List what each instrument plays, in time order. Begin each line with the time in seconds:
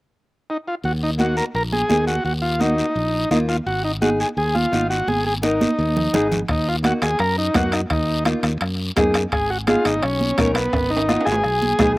0.50 transistor combo organ D#4
0.68 transistor combo organ F4
0.84 fingered electric bass D#2, transistor combo organ F#4, long guiro
1.03 transistor combo organ D#4
1.18 nylon-string guitar A#3 D#4 F#4, transistor combo organ F#4, high conga, short guiro
1.37 transistor combo organ A#4, short guiro
1.54 fingered electric bass A#1, transistor combo organ A#4, long guiro
1.72 transistor combo organ G#4, high conga
1.89 fingered electric bass D#2, nylon-string guitar A#3 D#4 G#4, high conga, short guiro
2.07 transistor combo organ F#4, short guiro
2.24 fingered electric bass D#2, transistor combo organ F#4, long guiro
2.42 transistor combo organ F4
2.59 nylon-string guitar A#3 D#4 F#4, transistor combo organ D#4, high conga, short guiro
2.78 short guiro
2.96 fingered electric bass A#1, long guiro
3.31 fingered electric bass D#2, nylon-string guitar A#3 D#4 F4, transistor combo organ D#4, high conga, short guiro
3.49 transistor combo organ F4, short guiro
3.66 fingered electric bass G#1, transistor combo organ F#4, long guiro
3.84 transistor combo organ D#4
4.01 nylon-string guitar B3 D#4 G#4, transistor combo organ F#4, high conga, short guiro
4.20 transistor combo organ G#4, short guiro
4.37 fingered electric bass D#2, transistor combo organ G#4, long guiro
4.55 transistor combo organ F4, high conga
4.72 fingered electric bass G#1, nylon-string guitar B3 D#4 F4, high conga, short guiro
4.90 transistor combo organ F#4, short guiro
5.07 fingered electric bass G#1, transistor combo organ G#4, high conga, long guiro
5.26 transistor combo organ G#4
5.42 nylon-string guitar B3 D#4 A#4, transistor combo organ D#4, high conga, short guiro
5.61 high conga, short guiro
5.79 fingered electric bass D#2, long guiro
5.97 low conga
6.13 fingered electric bass G#1, nylon-string guitar B3 D#4 G#4, low conga, short guiro
6.32 low conga, short guiro
6.48 fingered electric bass D#2, transistor combo organ D#4, bombo low, bombo rim, high timbale, long guiro
6.69 transistor combo organ F4
6.83 nylon-string guitar A#3 D#4 F#4, transistor combo organ F#4, bombo rim, high conga, high timbale, short guiro
7.02 fingered electric bass D#2, transistor combo organ G#4, bombo rim, high timbale, short guiro
7.19 fingered electric bass F#2, transistor combo organ A#4, bombo rim, high timbale, long guiro
7.38 transistor combo organ D#4
7.54 fingered electric bass F#2, nylon-string guitar A#3 D#4 F#4, transistor combo organ F#4, bombo low, bombo rim, high conga, high timbale, low timbale, short guiro
7.72 transistor combo organ D#4, bombo rim, high timbale, short guiro
7.90 fingered electric bass D#2, transistor combo organ D#4, bombo low, bombo rim, high timbale, long guiro
8.25 nylon-string guitar A#3 D#4 F4, bombo rim, high conga, high timbale, short guiro
8.43 fingered electric bass D#2, bombo rim, high timbale, short guiro
8.61 fingered electric bass F#2, bombo rim, high timbale, long guiro
8.96 fingered electric bass F#2, nylon-string guitar A#3 D#4 G#4, bombo low, bombo rim, high conga, high timbale, low timbale, short guiro
9.14 bombo rim, high timbale, short guiro
9.32 fingered electric bass G#1, transistor combo organ G#4, bombo low, bombo rim, high timbale, long guiro
9.50 transistor combo organ F#4
9.67 nylon-string guitar B3 D#4 G#4, transistor combo organ F4, bombo rim, high conga, high timbale, short guiro
9.85 fingered electric bass G#1, transistor combo organ D#4, bombo rim, high timbale, short guiro
10.02 fingered electric bass B1, transistor combo organ C#4, bombo rim, high timbale, long guiro
10.21 high conga
10.38 fingered electric bass B1, nylon-string guitar B3 D#4 A#4, bombo low, bombo rim, high conga, high timbale, low timbale, short guiro
10.54 transistor combo organ B3, bombo rim, high timbale, short guiro
10.73 fingered electric bass G#1, bombo low, bombo rim, high timbale, long guiro
10.90 transistor combo organ D#4
10.96 high timbale
11.08 nylon-string guitar B3 D#4 F4, bombo rim, high conga, short guiro
11.21 high timbale
11.25 fingered electric bass G#1, transistor combo organ G#4, bombo rim, short guiro
11.32 low timbale
11.44 fingered electric bass B1, bombo rim, long guiro
11.62 high conga
11.79 fingered electric bass B1, nylon-string guitar B3 D#4 G#4, bombo low, bombo rim, high conga, low timbale, short guiro